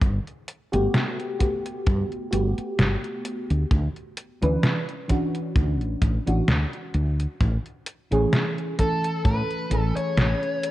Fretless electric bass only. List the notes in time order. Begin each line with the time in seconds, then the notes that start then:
0.02 G1
0.73 G1
1.87 G2
2.33 G1
2.58 muted fretless electric bass stroke
2.79 G1
3.50 D2
3.71 D2
4.43 D2
5.56 D2
5.81 A1
6.02 A1
6.27 A1
6.48 D2
6.94 D2
7.41 A1
8.12 A1
9.25 A2
9.71 A1
9.96 muted fretless electric bass stroke
10.17 A1